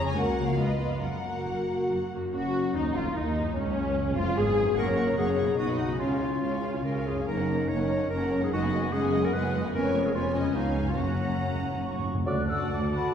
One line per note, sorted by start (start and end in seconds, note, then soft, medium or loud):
0.00 0.10 F2 medium
0.00 0.38 C#3 soft
0.00 0.12 G#3 soft
0.00 0.53 A#3 soft
0.00 0.17 C#4 soft
0.00 0.17 G#4 soft
0.00 0.11 C#5 soft
0.00 0.17 C#5 medium
0.08 3.53 C#4 soft
0.08 0.18 G#5 medium
0.12 0.52 C#5 soft
0.17 0.51 C#2 medium
0.17 0.52 C#2 medium
0.17 0.36 A#3 soft
0.17 0.36 F#4 soft
0.17 0.58 A#4 medium
0.17 0.48 F#5 medium
0.37 0.94 C#3 soft
0.37 0.58 A#3 soft
0.37 0.58 F#4 soft
0.44 0.96 B3 soft
0.49 0.99 F4 soft
0.49 0.60 F5 medium
0.53 0.95 C#5 soft
0.57 0.94 C#2 medium
0.57 0.95 C#2 soft
0.57 0.78 B3 soft
0.57 0.78 F4 soft
0.57 1.01 B4 soft
0.57 0.91 D#5 medium
0.79 1.01 B3 soft
0.79 1.01 F4 soft
0.83 2.15 F#2 soft
0.88 2.19 A#3 soft
0.92 2.24 F#4 soft
0.92 1.02 F5 soft
0.97 2.28 C#5 soft
1.01 1.38 F#1 soft
1.01 1.39 F#2 soft
1.01 2.12 A#4 soft
1.01 2.10 F#5 medium
1.24 1.67 A#3 soft
1.24 1.67 F#4 soft
1.45 1.82 F#1 soft
1.45 1.83 F#2 soft
1.68 2.11 A#3 soft
1.68 2.11 F#4 soft
1.90 2.27 F#1 soft
1.90 2.27 F#2 soft
2.12 2.33 A#3 soft
2.12 2.33 F#4 soft
2.16 3.38 F#2 soft
2.20 3.51 A#3 soft
2.25 3.54 F#4 soft
2.29 3.11 C#4 medium
2.29 3.51 C#5 soft
2.33 2.72 F#1 medium
2.33 2.73 F#2 medium
2.33 2.72 F#4 medium
2.33 2.73 F#4 medium
2.33 2.77 F#4 medium
2.74 2.95 D#2 medium
2.74 2.96 D#4 medium
2.74 2.95 D#4 medium
2.74 2.84 D#4 medium
2.74 2.95 D#4 medium
2.95 3.16 F1 medium
2.95 3.16 F2 medium
2.95 3.16 F4 medium
2.95 3.17 F4 medium
2.95 3.04 F4 medium
2.95 3.16 F4 medium
3.15 3.55 D#2 medium
3.15 3.56 D#2 medium
3.15 3.56 A#3 soft
3.15 3.55 D#4 medium
3.15 3.56 D#4 medium
3.15 3.58 D#4 medium
3.15 3.57 D#4 medium
3.39 4.58 F#2 soft
3.43 4.72 B3 soft
3.48 4.74 F4 soft
3.52 4.16 C#2 medium
3.52 4.13 F#2 medium
3.52 4.35 C#4 medium
3.52 4.72 C#5 soft
3.56 4.17 C#4 medium
3.56 4.16 C#4 medium
4.16 4.37 F1 medium
4.16 4.37 F2 medium
4.16 4.37 F4 medium
4.16 4.40 F4 medium
4.16 4.37 F4 medium
4.36 4.76 G#1 medium
4.36 4.77 G#2 medium
4.36 4.76 B3 medium
4.36 4.77 G#4 medium
4.36 4.78 G#4 medium
4.60 5.51 F#2 soft
4.64 5.53 A#3 soft
4.69 5.48 F#4 soft
4.73 5.13 F#1 medium
4.73 5.58 C#5 soft
4.73 4.86 F#5 medium
4.77 5.13 F#2 medium
4.77 5.34 F#2 medium
4.77 5.17 A#3 medium
4.77 4.87 A#3 medium
4.77 5.17 A#4 medium
4.77 4.87 C#6 soft
4.87 4.98 C#4 soft
4.87 4.97 C#5 soft
4.87 4.98 A#5 soft
4.96 5.08 A#3 soft
4.96 5.07 F#5 soft
4.96 5.08 C#6 soft
5.06 5.18 C#4 soft
5.06 5.17 C#5 soft
5.06 5.18 A#5 soft
5.16 5.53 F#1 medium
5.16 5.54 F#2 medium
5.16 5.28 A#3 soft
5.16 5.59 C#4 medium
5.16 5.58 G#4 medium
5.16 5.26 F#5 soft
5.16 5.28 C#6 soft
5.26 5.38 C#4 soft
5.26 5.37 C#5 soft
5.26 5.38 A#5 soft
5.38 5.93 B2 soft
5.38 5.48 A#3 soft
5.38 5.48 F#5 soft
5.38 5.48 C#6 soft
5.45 5.95 B3 soft
5.45 5.58 C#4 soft
5.45 5.58 C#5 soft
5.45 5.59 A#5 soft
5.49 5.97 F#4 soft
5.54 5.95 B1 medium
5.54 5.99 D#4 medium
5.54 5.68 F#4 soft
5.54 6.00 D#5 soft
5.58 5.95 B2 medium
5.58 5.78 F#4 medium
5.58 5.68 F#5 soft
5.58 5.68 D#6 soft
5.68 5.79 D#4 soft
5.68 5.79 D#5 soft
5.68 5.79 B5 soft
5.78 7.20 C#3 soft
5.78 5.98 D#4 medium
5.78 5.89 F#4 soft
5.78 5.90 F#5 soft
5.78 5.89 D#6 soft
5.86 7.23 G#3 soft
5.86 6.00 D#4 soft
5.86 6.00 D#5 soft
5.86 6.00 B5 soft
5.91 7.18 C#4 soft
5.95 6.87 F4 medium
5.95 7.22 C#5 soft
5.99 6.38 C#2 soft
5.99 6.38 C#3 soft
5.99 7.05 C#4 soft
5.99 6.10 F4 soft
5.99 6.10 C#5 soft
5.99 6.10 F5 soft
6.10 6.21 C#4 soft
6.10 6.22 F5 soft
6.10 6.21 G#5 soft
6.20 6.32 F4 soft
6.20 6.33 C#5 soft
6.20 6.32 F5 soft
6.31 6.42 C#4 soft
6.31 6.43 F5 soft
6.31 6.43 G#5 soft
6.42 6.81 C#2 soft
6.42 6.81 C#3 soft
6.42 6.53 F4 soft
6.42 6.53 C#5 soft
6.42 6.53 F5 soft
6.52 6.64 C#4 soft
6.52 6.65 F5 soft
6.52 6.65 G#5 soft
6.64 6.75 F4 soft
6.64 6.75 C#5 soft
6.64 6.75 F5 soft
6.75 6.86 C#4 soft
6.75 6.86 F5 soft
6.75 6.86 G#5 soft
6.85 7.23 C#2 soft
6.85 7.23 C#3 soft
6.85 6.95 F4 soft
6.85 7.08 A#4 medium
6.85 6.96 C#5 soft
6.85 6.95 F5 soft
6.94 7.07 C#4 soft
6.94 7.07 F5 soft
6.94 7.06 G#5 soft
7.06 7.18 F4 soft
7.06 7.27 G#4 medium
7.06 7.17 C#5 soft
7.06 7.17 F5 soft
7.10 8.33 F#2 soft
7.14 8.47 A#3 soft
7.14 7.28 C#4 soft
7.14 7.27 F5 soft
7.14 7.27 G#5 soft
7.19 8.50 C#4 soft
7.23 8.52 C#5 soft
7.23 7.37 C#5 soft
7.23 7.37 A#5 soft
7.28 7.65 F#1 medium
7.28 7.65 F#2 soft
7.28 7.38 A#3 soft
7.28 8.07 D#4 medium
7.28 7.70 A#4 medium
7.38 7.49 C#4 soft
7.38 7.48 A#4 soft
7.38 7.49 F#5 soft
7.48 7.59 A#3 soft
7.48 7.59 C#5 soft
7.48 7.59 A#5 soft
7.58 7.70 C#4 soft
7.58 7.69 A#4 soft
7.58 7.70 F#5 soft
7.69 8.06 F#1 medium
7.69 8.06 F#2 medium
7.69 7.79 A#3 soft
7.69 8.09 C#5 medium
7.69 7.79 C#5 soft
7.69 7.79 A#5 soft
7.79 7.90 C#4 soft
7.79 7.90 A#4 soft
7.79 7.90 F#5 soft
7.89 8.01 A#3 soft
7.89 8.01 C#5 soft
7.89 8.00 A#5 soft
8.00 8.12 C#4 soft
8.00 8.11 A#4 soft
8.00 8.11 F#5 soft
8.10 8.47 F#1 medium
8.10 8.47 F#2 soft
8.10 8.21 A#3 soft
8.10 8.53 C#4 soft
8.10 8.41 A#4 medium
8.10 8.21 C#5 soft
8.10 8.21 A#5 soft
8.22 8.32 C#4 soft
8.22 8.32 A#4 soft
8.22 8.32 F#5 soft
8.31 9.67 F#2 soft
8.31 8.43 A#3 soft
8.31 8.42 C#5 soft
8.31 8.42 A#5 soft
8.39 9.59 G#3 soft
8.39 8.53 C#4 soft
8.39 8.51 F#5 soft
8.43 9.72 D#4 soft
8.43 8.52 G#4 medium
8.43 8.53 A#4 soft
8.47 9.68 B4 soft
8.52 8.88 F#1 medium
8.52 8.89 F#2 medium
8.52 8.62 G#3 soft
8.52 8.93 D#4 medium
8.52 8.94 F#4 medium
8.52 8.62 D#5 soft
8.52 8.62 F#5 medium
8.63 8.73 B3 soft
8.63 8.73 F#5 medium
8.63 8.73 G#5 soft
8.73 8.83 G#3 soft
8.73 8.83 D#5 soft
8.73 8.84 F#5 soft
8.83 8.94 B3 soft
8.83 8.93 F#5 soft
8.83 8.94 G#5 soft
8.92 9.29 F#1 medium
8.92 9.29 F#2 medium
8.92 9.03 G#3 soft
8.92 9.33 C#4 medium
8.92 9.26 G#4 medium
8.92 9.03 D#5 soft
8.92 9.03 F#5 soft
9.03 9.14 B3 soft
9.03 9.14 F#5 soft
9.03 9.14 G#5 soft
9.13 9.24 G#3 soft
9.13 9.24 D#5 soft
9.13 9.24 F#5 soft
9.24 9.34 B3 soft
9.24 9.34 A#4 medium
9.24 9.35 F#5 soft
9.24 9.34 G#5 soft
9.33 9.69 F#1 medium
9.33 9.69 F#2 medium
9.33 9.44 G#3 soft
9.33 9.74 B3 medium
9.33 9.54 B4 medium
9.33 9.44 D#5 medium
9.33 9.44 F#5 soft
9.44 9.54 B3 soft
9.44 9.55 F#5 soft
9.44 9.54 G#5 soft
9.54 10.48 F2 soft
9.54 9.65 G#3 soft
9.54 9.65 D#5 soft
9.54 9.64 F#5 soft
9.61 10.41 G#3 soft
9.61 9.74 F#5 soft
9.61 9.73 G#5 soft
9.65 9.74 B3 soft
9.65 12.24 C#4 soft
9.70 10.55 B4 soft
9.74 10.51 F1 medium
9.74 10.51 F2 medium
9.74 10.12 B3 medium
9.74 10.13 C#4 medium
9.74 10.07 A#4 medium
9.74 10.12 C#5 medium
9.74 10.12 G#5 medium
10.06 10.14 G#4 medium
10.14 10.55 B3 medium
10.14 10.54 C#4 medium
10.14 10.34 F4 medium
10.14 10.35 C#5 soft
10.14 10.54 G#5 medium
10.35 10.90 C#3 soft
10.35 10.57 C#4 medium
10.35 10.56 D#5 soft
10.42 10.93 G#3 soft
10.46 10.95 F4 soft
10.51 10.92 C#5 soft
10.55 10.97 C#2 soft
10.55 10.97 B3 medium
10.55 10.98 C#4 soft
10.55 10.90 D#4 medium
10.55 10.99 F5 soft
10.55 10.97 G#5 soft
10.80 12.20 F#2 soft
10.84 12.22 A#3 soft
10.88 10.99 F4 medium
10.88 12.47 F#4 soft
10.93 12.26 C#5 soft
10.97 12.06 F#1 soft
10.97 12.06 F#2 soft
10.97 12.06 A#3 soft
10.97 12.05 C#4 soft
10.97 11.84 F#4 medium
10.97 12.07 F#5 soft
10.97 12.06 A#5 soft
11.14 11.19 F#2 soft
11.21 11.27 F#2 soft
11.28 11.35 F#2 soft
11.36 11.43 F#2 soft
11.44 11.51 F#2 soft
11.52 11.59 F#2 soft
11.60 11.66 F#2 soft
11.68 11.74 F#2 soft
11.75 11.81 F#2 soft
11.82 11.90 F#2 medium
11.82 12.24 C#6 medium
11.91 11.98 F#2 soft
11.99 12.05 F#2 medium
12.07 12.13 F#2 medium
12.14 12.22 F#2 medium
12.26 12.64 D2 medium
12.26 13.14 D3 soft
12.26 12.41 F#3 soft
12.26 12.42 A3 soft
12.26 12.42 F#4 soft
12.26 13.14 D5 medium
12.26 12.42 D5 soft
12.26 12.48 F#6 medium
12.37 13.14 A3 soft
12.47 13.14 F#4 soft
12.47 12.90 F#4 soft
12.47 12.89 F#5 soft
12.47 12.89 A5 soft
12.47 12.70 E6 medium
12.59 13.14 D5 soft
12.69 13.06 D2 medium
12.69 13.07 D2 medium
12.69 13.10 A4 soft
12.69 12.91 D6 medium
12.79 13.00 F#5 soft
12.90 13.14 F#4 soft
12.90 13.14 F#5 soft
12.90 13.14 A5 soft
12.90 13.12 B5 medium
12.90 13.14 D6 soft
13.01 13.14 F#5 soft
13.11 13.14 D2 medium